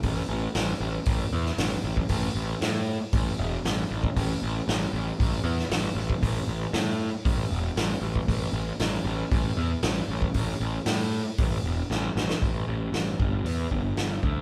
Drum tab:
HH |o---o---o---o---|o---o---o---o---|o---o---o---o---|o---o---o---o---|
SD |----o------oo---|----o-------o---|----o------oo---|----o-------o---|
BD |o-------o------o|o-------o------o|o-------o------o|o-------o------o|

HH |o---o---o---o---|o---o---o-------|o---o---o---o---|
SD |----o-------o---|----o-------o-oo|----o-------o---|
BD |o-------o------o|o-------o-------|o-----o---o---o-|